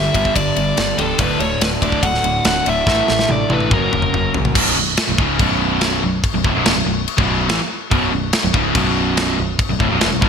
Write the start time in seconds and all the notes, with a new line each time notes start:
Already playing: G2 D3 G3 B3 D4 G4 E5
0.14 G1 G2 D3 G3 E5, kick, ride
0.25 kick
0.34 G1 G2 D3 D5, kick, ride
0.56 G1 G2 D3, ride
0.77 G1 G2 D3, snare, ride
0.98 C#1 G2 D3 G3 B3 D4 G4 A4, ride
1.19 D1 D2 A2 D3 F#3 A3 D4 B4, kick, ride
1.40 D1 D2 A2 C#5, ride
1.60 D1 D2 A2 B4, snare, ride
1.82 D1 D2 A2 D3 D5, kick, ride
1.92 kick
2.03 D1 D2 A2 F#5, kick, ride
2.14 snare
2.24 D1 D2 A2, ride
2.45 D1 D2 A2 F#5, snare, ride
2.66 D1 D2 A2 D3 F#3 A3 D4 E5, ride
2.86 A1 A2 E3 A3 D4 E4 A4, kick, snare
3.08 A1 A2 E3, snare
3.19 snare
3.28 A1 A2 E3 D5, high tom
3.50 A1 A2 E3 A3 B4, high tom
3.60 mid tom
3.70 F#1 F#2 C#3 F#3 A#3 C#4 F#4 A#4, kick, mid tom
3.92 F#1 F#2 C#3, mid tom
4.02 mid tom
4.12 F#1 F#2 C#3, mid tom
4.34 A#1 F#2 C#3, floor tom
4.45 floor tom
4.55 B0 B1 F#2 B2, kick, crash
4.76 B0 B1 F#2
4.97 snare, crash
5.07 B0 B1 F#2
5.18 C#1 C#2 G#2 C#3, kick
5.39 B0 B1 F#2 B2, kick, crash
5.81 snare, crash
6.04 B0 B1 F#2
6.24 kick, crash
6.34 B0 B1 F#2
6.44 D1 D2 A2, kick
6.54 B0 B1 F#2
6.65 E1 E2 B2, snare, crash
6.75 B0 B1 F#2
6.86 B0 B1 F#2
7.08 crash
7.18 B0 B1 F#2 B2, kick
7.48 A1 A2 E3, snare, crash
7.91 B0 B1 F#2 B2, kick, crash
8.12 B0 B1 F#2
8.33 snare, crash
8.43 B0 B1 F#2
8.54 C#1 C#2 G#2 C#3, kick
8.74 B0 B1 F#2 B2, kick, crash
9.17 snare, crash
9.38 B0 B1 F#2
9.59 kick, crash
9.69 B0 B1 F#2
9.79 D1 D2 A2, kick
9.89 B0 B1 F#2
9.99 E2 B2, snare, crash
10.04 E1
10.10 B0 B1 F#2
10.21 G1 G2 D3 G3, kick